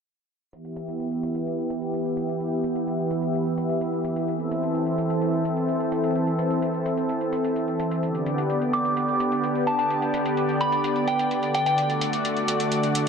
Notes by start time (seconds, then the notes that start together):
0.53 E3 B3 G4 E5, closed hi-hat
0.65 closed hi-hat
0.76 closed hi-hat
0.88 closed hi-hat
1.00 closed hi-hat
1.12 closed hi-hat
1.23 closed hi-hat
1.35 closed hi-hat
1.47 closed hi-hat
1.58 closed hi-hat
1.70 closed hi-hat
1.82 closed hi-hat
1.94 closed hi-hat
2.05 closed hi-hat
2.17 closed hi-hat
2.29 closed hi-hat
2.40 closed hi-hat
2.52 closed hi-hat
2.64 closed hi-hat
2.76 closed hi-hat
2.87 closed hi-hat
2.99 closed hi-hat
3.11 closed hi-hat
3.23 closed hi-hat
3.34 closed hi-hat
3.46 closed hi-hat
3.58 closed hi-hat
3.69 closed hi-hat
3.81 closed hi-hat
3.93 closed hi-hat
4.05 closed hi-hat
4.16 closed hi-hat
4.28 C4 A4, closed hi-hat
4.40 closed hi-hat
4.51 closed hi-hat
4.63 closed hi-hat
4.75 closed hi-hat
4.87 closed hi-hat
4.98 closed hi-hat
5.10 closed hi-hat
5.22 closed hi-hat
5.33 closed hi-hat
5.45 closed hi-hat
5.57 closed hi-hat
5.69 closed hi-hat
5.80 closed hi-hat
5.92 closed hi-hat
6.04 closed hi-hat
6.15 closed hi-hat
6.27 closed hi-hat
6.39 closed hi-hat
6.51 closed hi-hat
6.62 closed hi-hat
6.74 closed hi-hat
6.86 closed hi-hat
6.97 closed hi-hat
7.09 closed hi-hat
7.21 closed hi-hat
7.33 closed hi-hat
7.44 closed hi-hat
7.56 closed hi-hat
7.68 closed hi-hat
7.80 closed hi-hat
7.91 closed hi-hat
8.03 D3 B3 G4 D5, closed hi-hat
8.15 closed hi-hat
8.26 closed hi-hat
8.38 closed hi-hat
8.50 closed hi-hat
8.62 closed hi-hat
8.73 D6, closed hi-hat
8.85 closed hi-hat
8.97 closed hi-hat
9.08 closed hi-hat
9.20 closed hi-hat
9.32 closed hi-hat
9.44 closed hi-hat
9.55 closed hi-hat
9.67 A5, closed hi-hat
9.79 A5, closed hi-hat
9.90 closed hi-hat
10.02 closed hi-hat
10.14 closed hi-hat
10.26 closed hi-hat
10.37 closed hi-hat
10.49 closed hi-hat
10.61 B5, closed hi-hat
10.72 closed hi-hat
10.84 closed hi-hat
10.96 closed hi-hat
11.08 G5, closed hi-hat
11.19 closed hi-hat
11.31 closed hi-hat
11.43 closed hi-hat
11.54 G5, closed hi-hat
11.66 G5, closed hi-hat
11.78 A3 F#4, closed hi-hat
11.90 closed hi-hat
12.01 closed hi-hat
12.13 closed hi-hat
12.25 closed hi-hat
12.37 closed hi-hat
12.48 closed hi-hat
12.60 closed hi-hat
12.72 closed hi-hat
12.83 closed hi-hat
12.95 closed hi-hat